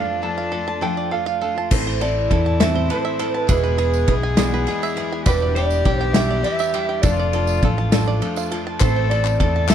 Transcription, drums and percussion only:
1.71 kick, crash, tambourine
2.01 ride, tambourine
2.31 kick, ride
2.60 snare, ride, tambourine
2.90 ride, tambourine
3.19 ride
3.49 kick, ride, tambourine
3.78 ride, tambourine
3.94 tambourine
4.08 kick, ride
4.37 snare, ride, tambourine
4.67 ride, tambourine
4.83 tambourine
4.97 ride
5.26 kick, ride, tambourine
5.56 ride, tambourine
5.70 tambourine
5.85 kick, ride
6.14 snare, ride, tambourine
6.44 ride, tambourine
6.59 tambourine
6.74 ride
7.03 kick, ride, tambourine
7.33 ride
7.47 tambourine
7.62 kick, ride
7.92 snare, ride, tambourine
8.22 ride
8.36 tambourine
8.51 ride, tambourine
8.80 kick, clap, ride, tambourine
9.11 ride, tambourine
9.25 clap, tambourine
9.40 kick, ride
9.68 snare, clap, ride, tambourine

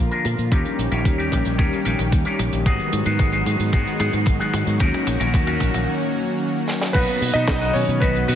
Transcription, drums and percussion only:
0.11 closed hi-hat
0.25 closed hi-hat, mid tom
0.39 closed hi-hat
0.52 kick, closed hi-hat, mid tom
0.65 closed hi-hat
0.79 closed hi-hat
0.92 closed hi-hat
1.05 kick, closed hi-hat
1.19 closed hi-hat
1.32 kick, closed hi-hat, mid tom
1.45 closed hi-hat
1.59 kick, closed hi-hat, mid tom
1.73 closed hi-hat
1.85 closed hi-hat
1.99 closed hi-hat, mid tom
2.12 kick, closed hi-hat
2.25 closed hi-hat
2.39 closed hi-hat, mid tom
2.53 closed hi-hat
2.66 kick, closed hi-hat, mid tom
2.79 closed hi-hat
2.93 closed hi-hat, mid tom
3.06 closed hi-hat
3.19 kick, closed hi-hat, mid tom
3.32 closed hi-hat
3.46 closed hi-hat, mid tom
3.60 closed hi-hat
3.73 kick, closed hi-hat, mid tom
3.87 closed hi-hat
4.00 closed hi-hat, mid tom
4.13 closed hi-hat
4.26 kick, closed hi-hat, mid tom
4.41 closed hi-hat
4.53 closed hi-hat, mid tom
4.67 closed hi-hat
4.80 kick, closed hi-hat, mid tom
4.94 closed hi-hat, mid tom
5.07 closed hi-hat, mid tom
5.20 closed hi-hat, mid tom
5.34 kick, closed hi-hat, mid tom
5.47 closed hi-hat, mid tom
5.60 kick, closed hi-hat, mid tom
5.74 closed hi-hat, mid tom
6.68 snare
6.81 snare
6.94 kick, closed hi-hat, crash
7.07 closed hi-hat
7.22 open hi-hat
7.35 closed hi-hat
7.48 kick, snare, clap, closed hi-hat
7.61 closed hi-hat
7.75 open hi-hat
7.88 closed hi-hat
8.02 kick, closed hi-hat
8.15 closed hi-hat
8.28 open hi-hat

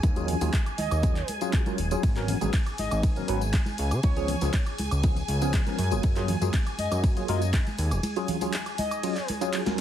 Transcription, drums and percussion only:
0.03 kick, closed hi-hat, tambourine, high conga, shaker
0.16 closed hi-hat, tambourine
0.28 open hi-hat, low conga, shaker
0.41 open hi-hat, tambourine, high conga, shaker
0.53 kick, clap, closed hi-hat, tambourine, shaker
0.66 closed hi-hat, tambourine, high woodblock
0.78 open hi-hat, high conga, shaker
0.91 closed hi-hat, tambourine, high woodblock, shaker
1.03 kick, closed hi-hat, tambourine, shaker
1.16 clap, closed hi-hat, tambourine
1.28 open hi-hat, high conga, shaker
1.41 closed hi-hat, tambourine, shaker
1.53 kick, clap, closed hi-hat, tambourine
1.66 closed hi-hat, tambourine, high conga
1.78 open hi-hat, shaker
1.91 closed hi-hat, tambourine, shaker
2.03 kick, closed hi-hat, ride, tambourine, high conga, shaker
2.16 clap, closed hi-hat, tambourine
2.28 open hi-hat, low conga, shaker
2.41 closed hi-hat, tambourine, high conga, shaker
2.52 kick, clap, closed hi-hat, ride, tambourine, shaker
2.66 closed hi-hat, tambourine, high woodblock
2.78 open hi-hat, high conga, shaker
2.91 closed hi-hat, tambourine, high woodblock, shaker
3.03 kick, closed hi-hat, ride, tambourine, shaker
3.16 closed hi-hat, tambourine
3.28 open hi-hat, high conga, shaker
3.41 closed hi-hat, tambourine, shaker
3.53 kick, clap, closed hi-hat, ride, tambourine, shaker
3.66 closed hi-hat, tambourine, high conga
3.78 open hi-hat, shaker
3.91 closed hi-hat, tambourine, high woodblock, shaker
4.03 kick, closed hi-hat, ride, tambourine, high conga, shaker
4.16 closed hi-hat, tambourine
4.28 open hi-hat, low conga, shaker
4.41 open hi-hat, tambourine, high conga, shaker
4.53 kick, clap, closed hi-hat, ride, tambourine
4.66 closed hi-hat, tambourine, high woodblock
4.78 open hi-hat, high conga, shaker
4.91 closed hi-hat, tambourine, high woodblock, shaker
5.03 kick, closed hi-hat, ride, tambourine, shaker
5.16 closed hi-hat, tambourine
5.28 open hi-hat, high conga, shaker
5.41 closed hi-hat, tambourine, shaker
5.54 kick, clap, closed hi-hat, ride, tambourine
5.67 closed hi-hat, tambourine, high conga
5.79 open hi-hat, shaker
5.91 closed hi-hat, tambourine, shaker
6.03 kick, closed hi-hat, ride, tambourine, high conga, shaker
6.16 clap, closed hi-hat, tambourine
6.28 open hi-hat, low conga, shaker
6.42 closed hi-hat, tambourine, high conga, shaker
6.54 kick, clap, closed hi-hat, ride, tambourine
6.67 closed hi-hat, tambourine, high woodblock
6.78 open hi-hat, high conga, shaker
6.91 closed hi-hat, tambourine, high woodblock, shaker
7.04 kick, closed hi-hat, ride, tambourine, shaker
7.17 closed hi-hat, tambourine
7.28 open hi-hat, high conga, shaker
7.42 closed hi-hat, tambourine, shaker
7.54 kick, clap, closed hi-hat, ride, tambourine, shaker
7.67 closed hi-hat, tambourine, high conga
7.78 open hi-hat, shaker
7.91 closed hi-hat, tambourine, high woodblock, shaker
8.03 closed hi-hat, ride, tambourine, high conga, shaker
8.16 closed hi-hat, tambourine
8.28 open hi-hat, low conga, shaker
8.41 open hi-hat, tambourine, high conga, shaker
8.53 clap, closed hi-hat, ride, tambourine, shaker
8.66 closed hi-hat, tambourine, high woodblock
8.78 open hi-hat, high conga, shaker
8.91 closed hi-hat, tambourine, high woodblock, shaker
9.03 closed hi-hat, ride, tambourine, shaker
9.16 clap, closed hi-hat, tambourine
9.28 open hi-hat, high conga, shaker
9.41 closed hi-hat, tambourine, shaker
9.53 clap, closed hi-hat, ride, tambourine, shaker
9.66 snare, closed hi-hat, tambourine, high conga

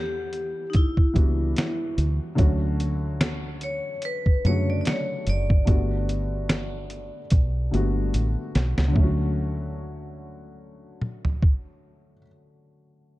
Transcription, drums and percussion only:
0.33 closed hi-hat
0.73 kick, closed hi-hat
0.97 kick
1.16 kick, closed hi-hat
1.56 finger snap, snare, closed hi-hat
1.98 closed hi-hat
2.38 kick, closed hi-hat
2.80 closed hi-hat
3.21 finger snap, snare, closed hi-hat
3.61 closed hi-hat
4.02 closed hi-hat
4.26 kick
4.45 closed hi-hat
4.85 finger snap, snare, closed hi-hat
5.27 closed hi-hat
5.50 kick
5.67 kick, closed hi-hat
6.09 closed hi-hat
6.49 finger snap, snare, closed hi-hat
6.90 closed hi-hat
7.30 kick, closed hi-hat
7.74 closed hi-hat
8.14 closed hi-hat
8.55 snare, closed hi-hat
8.78 snare
8.96 kick
11.01 mid tom
11.25 floor tom
11.42 kick

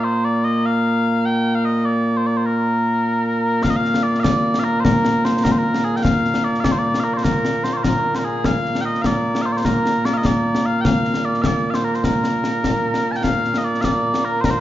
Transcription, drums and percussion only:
3.64 concert bass drum, snare
3.85 snare
3.94 snare
4.15 snare
4.24 concert bass drum, snare
4.54 snare
4.85 concert bass drum, snare
5.05 snare
5.25 snare
5.45 concert bass drum, snare
5.74 snare
6.05 concert bass drum, snare
6.25 snare
6.34 snare
6.55 snare
6.64 concert bass drum, snare
6.94 snare
7.24 concert bass drum, snare
7.45 snare
7.64 snare
7.84 concert bass drum, snare
8.15 snare
8.44 concert bass drum, snare
8.65 snare
8.75 snare
8.95 snare
9.04 concert bass drum, snare
9.35 snare
9.65 concert bass drum, snare
9.86 snare
10.05 snare
10.25 concert bass drum, snare
10.55 snare
10.85 concert bass drum, snare
11.05 snare
11.14 snare
11.34 snare
11.44 concert bass drum, snare
11.74 snare
11.94 snare
12.04 concert bass drum, snare
12.24 snare
12.44 snare
12.64 concert bass drum, snare
12.94 snare
13.14 snare
13.24 concert bass drum, snare
13.44 snare
13.54 snare
13.74 snare
13.84 concert bass drum, snare
14.14 snare
14.44 concert bass drum, snare

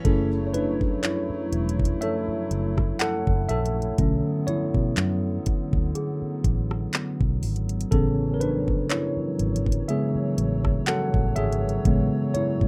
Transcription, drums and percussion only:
0.05 kick, closed hi-hat
0.54 closed hi-hat
0.81 kick
1.03 clap, closed hi-hat
1.53 closed hi-hat
1.69 closed hi-hat
1.80 kick
1.85 closed hi-hat
2.02 closed hi-hat
2.51 closed hi-hat
2.78 kick, cross-stick
3.00 clap, closed hi-hat
3.27 kick
3.49 closed hi-hat
3.66 closed hi-hat
3.82 closed hi-hat
3.98 kick, closed hi-hat
4.48 closed hi-hat
4.75 kick
4.97 clap, closed hi-hat
5.46 kick, closed hi-hat
5.73 kick
5.95 closed hi-hat
6.44 kick, closed hi-hat
6.71 cross-stick
6.93 clap, closed hi-hat
7.21 kick
7.43 closed hi-hat, open hi-hat
7.56 closed hi-hat
7.69 closed hi-hat
7.81 closed hi-hat
7.92 kick, closed hi-hat
8.41 closed hi-hat
8.68 kick
8.90 clap, closed hi-hat
9.39 closed hi-hat
9.56 closed hi-hat
9.66 kick
9.72 closed hi-hat
9.89 closed hi-hat
10.38 closed hi-hat
10.65 kick, cross-stick
10.87 clap, closed hi-hat
11.14 kick
11.36 closed hi-hat
11.53 closed hi-hat
11.69 closed hi-hat
11.85 kick, closed hi-hat
12.35 closed hi-hat
12.61 kick

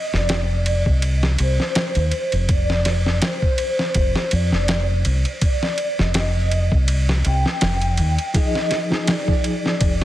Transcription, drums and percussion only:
0.14 snare
0.29 snare, ride
0.66 ride
0.86 kick
1.02 ride
1.23 snare
1.39 ride
1.60 snare
1.75 snare, ride
1.95 ride
2.11 ride
2.32 ride
2.49 kick, ride
2.70 snare
2.85 snare, ride
3.06 snare
3.22 snare, ride
3.42 kick
3.58 ride
3.79 snare
3.94 kick, ride
4.16 snare
4.31 ride
4.52 snare
4.68 snare, ride
5.05 ride
5.25 ride
5.42 kick, ride
5.63 snare
5.78 ride
5.99 snare
6.14 snare, ride
6.51 ride
6.72 kick
6.88 ride
7.09 snare
7.25 ride
7.46 snare
7.61 snare, ride
7.82 ride
7.97 ride
8.18 ride
8.35 kick, ride
8.55 snare
8.71 snare, ride
8.92 snare
9.07 snare, ride
9.28 kick
9.44 ride
9.66 snare
9.81 kick, ride

